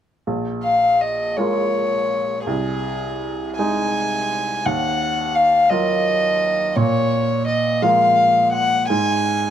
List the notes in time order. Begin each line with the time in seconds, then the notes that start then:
0.27 A#1
0.63 F5
1.01 D#5
1.37 G#3 F4 A#4 C#5
2.45 C2 G#4
3.58 G#3 D#4 G#4 G#5
4.65 D#2 F#5
5.35 F5
5.69 F#3 F4 A#4 D#5
6.76 A#2 C#5
7.48 D#5
7.82 F3 G#3 A#4 F5
8.53 F#5
8.89 G#2 G#5